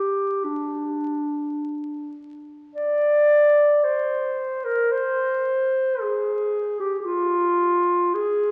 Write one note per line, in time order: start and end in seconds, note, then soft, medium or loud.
0.00 0.46 G4 soft
0.44 2.18 D4 soft
2.75 3.85 D5 medium
3.83 4.66 C5 medium
4.64 4.93 A#4 medium
4.91 6.02 C5 medium
6.01 6.79 G#4 medium
6.80 6.99 G4 medium
7.00 7.06 G4 soft
7.05 8.16 F4 medium
8.14 8.51 G#4 medium